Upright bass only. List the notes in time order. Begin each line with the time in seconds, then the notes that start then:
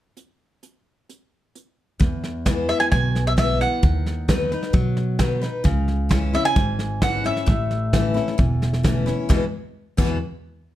2.01 E2
2.92 B1
3.83 D#2
4.74 B2
5.65 C#2
6.56 G#1
7.47 A1
8.39 E1
9.30 E2
9.98 E2